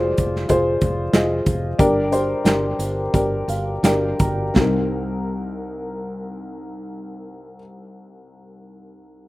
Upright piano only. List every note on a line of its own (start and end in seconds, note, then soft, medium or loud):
0.00 0.49 F4 medium
0.00 0.50 G#4 medium
0.00 0.50 C5 loud
0.00 1.80 D5 medium
0.49 1.02 F4 medium
0.49 1.03 G#4 medium
0.49 1.03 C5 medium
1.13 1.67 F4 medium
1.13 1.68 G#4 medium
1.13 1.68 D#5 medium
1.79 2.75 G2 medium
1.79 2.06 D4 medium
1.79 2.07 G4 medium
1.79 2.07 A#4 medium
2.11 2.39 D4 medium
2.11 2.40 G4 medium
2.11 2.40 C5 medium
2.44 3.01 D4 medium
2.44 3.02 G4 medium
2.44 3.02 A#4 medium
3.13 3.71 D4 medium
3.13 3.72 G4 medium
3.13 3.72 A#4 medium
3.49 3.81 F5 medium
3.84 4.44 D4 medium
3.84 4.44 G4 medium
3.84 4.44 A#4 medium
3.84 4.17 G5 medium
4.20 4.54 A#5 soft
4.54 7.57 C2 medium
4.54 7.54 C4 medium
4.54 7.57 D#4 medium
4.60 7.60 A#4 medium